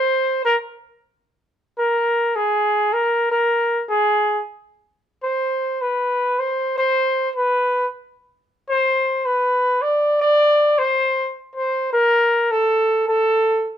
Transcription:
X:1
M:4/4
L:1/16
Q:"Swing" 1/4=104
K:Clyd
V:1 name="Trumpet"
c2 _B2 z8 B4 | _A4 _B2 B4 A4 z2 | z4 c4 B4 c2 c2- | c2 B4 z6 c4 |
B4 d2 d4 c4 z2 | c2 _B4 A4 A4- A z |]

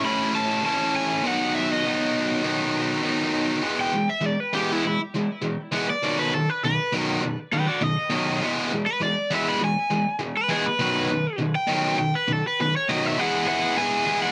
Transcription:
X:1
M:4/4
L:1/8
Q:1/4=201
K:E
V:1 name="Overdriven electric guitar"
b2 a2 a2 g2 | f2 e d4- d- | d6 z2 | z =g2 e =d B =G E |
E z6 =d- | =d B A B B2 z2 | z2 [B=g] [F=d] ^d4- | d2 z B =d2 e b |
g4 z B G B | B4 z =g3 | =g B A B B c d e | f2 f2 g3 f |]
V:2 name="Distorted electric guitar" clef=bass
[A,,E,A,CE]4 [A,,E,A,CE]4 | [B,,D,F,B,D]4 [B,,D,F,B,D]4 | [B,,D,F,B,D]4 [B,,D,F,B,D]4 | [E,G,B,]2 [E,G,] z [E,G,] z [E,G,B,]2 |
[E,G,] z [E,G,] z [E,G,] z [E,G,B,] z | [B,,D,F,]2 [B,,D,] z [B,,D,] z [B,,D,F,]2 | [B,,D,] z [B,,D,] z [B,,D,] z [B,,D,F,]2 | [E,G,B,]2 [E,G,] z [E,G,] z [E,G,B,]2 |
[E,G,] z [E,G,] z [E,G,] z [E,G,B,] z | [B,,D,F,]2 [B,,D,] z [B,,D,] z [B,,D,F,]2 | [B,,D,] z [B,,D,] z [B,,D,] z [B,,D,F,]2 | [E,G,B,EG]2 [E,G,B,EG]2 [E,G,B,EG]2 [E,G,B,EG]2 |]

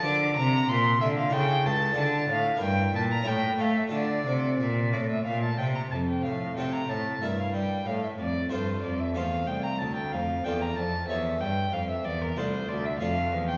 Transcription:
X:1
M:3/4
L:1/16
Q:1/4=93
K:Dm
V:1 name="Violin"
d'2 b2 c'2 e f g2 a2 | a2 f2 g2 a b g2 f e | d6 d e f a g b | [K:F] a g f2 g b a2 e f g2 |
f e d2 c2 d e f2 g b | a g f2 g b a2 e2 g2 | f e d B c2 d e f3 g |]
V:2 name="Harpsichord"
[DGB]8 [EA]4 | [DFA]4 [EB]4 [^CEA]4 | [DFA]12 | [K:F] z4 [CFA]4 [B,EB]4 |
z4 [A,Fc]4 [A,Fc]4 | z4 [A,Fd]4 [G^c]4 | z4 [A,Fd]4 [A,Fd]4 |]
V:3 name="Harpsichord" clef=bass
D,2 C,2 B,,2 D,2 ^C,2 ^C,,2 | D,2 A,,2 G,,2 B,,2 A,,2 A,2 | D,2 C,2 B,,2 A,,2 B,,2 C,2 | [K:F] F,,2 A,,2 C,2 A,,2 G,,2 G,2 |
A,,2 F,,2 G,,2 F,,2 E,,2 C,,2 | D,,2 F,,2 E,,2 F,,2 E,,2 G,,2 | F,,2 E,,2 C,,2 D,,2 F,,2 E,,2 |]
V:4 name="Cello" clef=bass
D,2 C,2 B,,2 D,2 ^C,2 ^C,,2 | D,2 A,,2 G,,2 B,,2 A,,2 A,2 | D,2 C,2 B,,2 A,,2 B,,2 C,2 | [K:F] F,,2 A,,2 C,2 A,,2 G,,2 G,2 |
A,,2 F,,2 G,,2 F,,2 E,,2 C,,2 | D,,2 F,,2 E,,2 F,,2 E,,2 G,,2 | F,,2 E,,2 C,,2 D,,2 F,,2 E,,2 |]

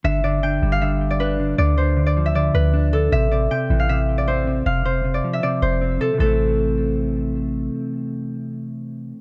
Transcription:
X:1
M:4/4
L:1/16
Q:1/4=156
K:Am
V:1 name="Harp"
e2 d2 g3 f e3 d B2 z2 | d2 c3 d2 e d2 B4 A2 | e2 d2 g3 f e3 d c2 z2 | f2 c3 d2 e d2 c4 A2 |
A12 z4 | z16 |]
V:2 name="Clean electric guitar" clef=bass
D,2 D,2 D,2 G,2 D,4 D2 D,2 | D,2 D,2 D,2 F,2 D,4 D2 D,2 | C,2 C,2 C,2 E,2 C,4 C2 C,2 | C,2 C,2 C,2 F,2 C,4 C2 C,2 |
[C,E,A,C]16- | [C,E,A,C]16 |]
V:3 name="808-style bass" clef=bass
G,,,6 G,,,8- G,,,2 | D,,8- D,,2 D,,6 | A,,,4 z2 A,,,8- A,,,2 | F,,,6 z4 F,,,4 z2 |
A,,,16 | z16 |]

